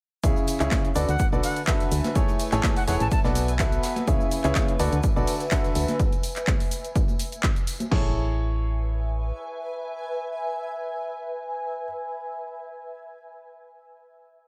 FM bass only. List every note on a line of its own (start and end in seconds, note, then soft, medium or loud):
0.24 0.33 C#2 loud
0.61 0.68 C#2 medium
0.96 1.05 D2 medium
1.08 1.16 D2 loud
1.32 1.40 B1 medium
1.92 2.01 D2 medium
2.52 2.60 A1 medium
2.88 2.97 E1 medium
3.00 3.08 A1 loud
3.24 3.79 B1 loud
4.08 4.17 C#2 loud
4.44 4.52 C#2 medium
4.80 4.89 D2 medium
4.92 5.00 D2 medium
5.16 5.24 B1 loud
5.76 5.85 D2 medium
7.92 9.32 A1 loud